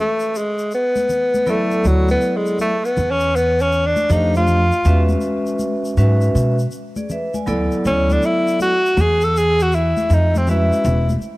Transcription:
0.00 A3
0.20 shaker
0.35 G#3, shaker
0.59 shaker
0.71 B3, shaker
0.96 high conga, shaker
1.09 low conga, shaker
1.34 high conga, shaker
1.46 F#3 A3 B3 E4 A4 D5, low conga, shaker
1.71 shaker
1.84 D2 F#3, shaker
2.09 B3, high conga, shaker
2.21 shaker
2.36 G#3
2.46 shaker
2.59 A3, high conga, shaker
2.85 B3, shaker
2.97 E2, low conga, shaker
3.11 C#4
3.20 shaker
3.36 B3, shaker
3.59 C#4, shaker
3.72 shaker
3.86 D4
3.96 high conga, shaker
4.09 F2 A3 D4 D#4 G4 C5 F5, low conga, shaker
4.35 F4, high conga, shaker
4.47 low conga, shaker
4.72 shaker
4.85 E2 G#3 C#4 F#4 B4 E5, shaker
5.09 high conga, shaker
5.21 shaker
5.46 shaker
5.59 high conga, shaker
5.85 shaker
5.97 G#2 F#3 C#4 F#4 B4 E5, low conga, shaker
6.03 G#3
6.21 shaker
6.35 B2, shaker
6.59 shaker
6.71 shaker
6.96 G#4 D5, high conga, shaker
7.10 B4 E5, low conga, shaker
7.34 D5 G#5, high conga, shaker
7.47 D2 F#3 B3 E4 A4 D5, low conga, shaker
7.72 shaker
7.85 D2 C#4, shaker
8.10 D4, high conga, shaker
8.22 E4, shaker
8.47 shaker
8.60 F#4, high conga, shaker
8.86 shaker
8.97 E2 G#4, high conga, low conga, shaker
9.21 A4, shaker
9.37 G#4, shaker
9.60 F#4, shaker
9.72 E4, shaker
9.97 high conga, shaker
10.10 F2 D#4, low conga, shaker
10.35 C4, high conga, shaker
10.47 G#3 C#4 E4 F#4 B4 E5, low conga, shaker
10.72 shaker
10.85 E1, shaker
11.09 high conga, shaker
11.22 shaker

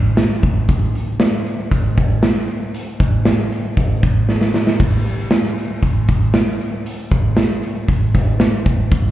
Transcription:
0.17 snare, closed hi-hat
0.42 kick, closed hi-hat
0.69 kick, closed hi-hat
0.95 closed hi-hat
1.20 snare, closed hi-hat
1.47 closed hi-hat
1.71 kick, closed hi-hat
1.97 kick, closed hi-hat
2.23 snare, closed hi-hat
2.48 closed hi-hat
2.75 closed hi-hat
3.00 kick, closed hi-hat
3.25 snare, closed hi-hat
3.52 closed hi-hat
3.77 kick, closed hi-hat
4.03 kick, closed hi-hat
4.29 snare
4.41 snare
4.54 snare
4.67 snare
4.80 kick, crash
5.07 closed hi-hat
5.31 snare, closed hi-hat
5.58 closed hi-hat
5.83 kick, closed hi-hat
6.08 kick, closed hi-hat
6.34 snare, closed hi-hat
6.60 closed hi-hat
6.86 closed hi-hat
7.12 kick, closed hi-hat
7.37 snare, closed hi-hat
7.63 closed hi-hat
7.88 kick, closed hi-hat
8.14 kick, snare, closed hi-hat
8.40 snare, closed hi-hat
8.66 kick, closed hi-hat
8.92 kick, closed hi-hat

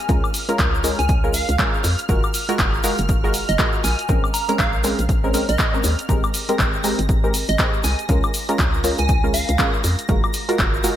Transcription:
Already playing: G#5 F6
0.09 C#2 G#3 C#4 F4 A#4, kick, closed hi-hat, shaker
0.24 high woodblock, shaker
0.34 open hi-hat, shaker
0.49 G#3 C#4 F4 A#4, closed hi-hat, shaker
0.59 C#2, kick, clap, closed hi-hat, shaker
0.75 shaker
0.84 G#3 C#4 F4 A#4, open hi-hat, shaker
0.99 C#2 G#5, closed hi-hat, shaker
1.09 kick, closed hi-hat, shaker
1.24 G#3 C#4 F4 A#4, shaker
1.34 F5, open hi-hat, shaker
1.49 C#2, closed hi-hat, shaker
1.59 G#3 C#4 F4 A#4, kick, clap, closed hi-hat, shaker
1.74 shaker
1.84 F2, open hi-hat, shaker
1.98 closed hi-hat, shaker
2.09 F#1 G#3 F4 F#4 A#4, kick, closed hi-hat, shaker
2.24 high woodblock, shaker
2.34 open hi-hat, shaker
2.49 G#3 F4 F#4 A#4, closed hi-hat, shaker
2.59 F#1, kick, clap, closed hi-hat, shaker
2.74 shaker
2.84 G#3 F4 F#4 A#4, open hi-hat, shaker
2.98 F#1, closed hi-hat, shaker
3.09 kick, closed hi-hat, shaker
3.24 G#3 F4 F#4 A#4, shaker
3.34 open hi-hat, shaker
3.49 F#1 D#5, closed hi-hat, shaker
3.59 G#3 F4 F#4 A#4 D#5, kick, clap, closed hi-hat, shaker
3.73 shaker
3.84 A#1 G#5, open hi-hat, shaker
3.99 closed hi-hat, shaker
4.09 A#1 G#3 C4 C#4 A#4, kick, closed hi-hat, shaker
4.24 high woodblock, shaker
4.34 A#5, open hi-hat, shaker
4.49 G#3 C4 C#4 A#4 A#5, closed hi-hat, shaker
4.59 A#1 F5, kick, clap, closed hi-hat, shaker
4.73 shaker
4.84 G#3 C4 C#4 A#4, open hi-hat, shaker
4.99 A#1, closed hi-hat, shaker
5.09 kick, closed hi-hat, shaker
5.24 G#3 C4 C#4 A#4, shaker
5.34 G#3 C4 C#4 A#4, open hi-hat, shaker
5.49 A#1 D#5, closed hi-hat, shaker
5.58 kick, clap, closed hi-hat, shaker
5.74 G#3 C4 C#4 A#4, shaker
5.84 D#2, open hi-hat, shaker
5.99 closed hi-hat, shaker
6.09 G#1 G#3 C4 G4 A#4 A#6, kick, closed hi-hat, shaker
6.24 high woodblock, shaker
6.34 open hi-hat, shaker
6.49 G#3 C4 G4 A#4, closed hi-hat, shaker
6.59 G#1, kick, clap, closed hi-hat, shaker
6.74 shaker
6.84 G#3 C4 G4 A#4, open hi-hat, shaker
6.99 G#1, closed hi-hat, shaker
7.09 kick, closed hi-hat, shaker
7.24 G#3 C4 G4 A#4, shaker
7.34 open hi-hat, shaker
7.48 G#1 D#5, closed hi-hat, shaker
7.58 G#3 C4 G4 A#4 D#5, kick, clap, closed hi-hat, shaker
7.74 shaker
7.84 C2 G#5, open hi-hat, shaker
7.99 closed hi-hat, shaker
8.09 C#2 G#3 C#4 F4 A#4, kick, closed hi-hat, shaker
8.23 high woodblock, shaker
8.34 open hi-hat, shaker
8.49 G#3 C#4 F4 A#4, closed hi-hat, shaker
8.59 C#2, kick, clap, closed hi-hat, shaker
8.74 shaker
8.84 G#3 C#4 F4 A#4, open hi-hat, shaker
8.98 C#2 G#5, closed hi-hat, shaker
9.09 kick, closed hi-hat, shaker
9.24 G#3 C#4 F4 A#4, shaker
9.34 F5, open hi-hat, shaker
9.49 C#2, closed hi-hat, shaker
9.59 G#3 C#4 F4 A#4, kick, clap, closed hi-hat, shaker
9.74 shaker
9.84 F2, open hi-hat, shaker
9.99 closed hi-hat, shaker
10.08 F#1 G#3 F4 F#4 A#4, kick, closed hi-hat, shaker
10.24 high woodblock, shaker
10.34 open hi-hat, shaker
10.49 G#3 F4 F#4 A#4, closed hi-hat, shaker
10.59 F#1, kick, clap, closed hi-hat, shaker
10.74 shaker
10.84 G#3 F4 F#4 A#4, open hi-hat, shaker

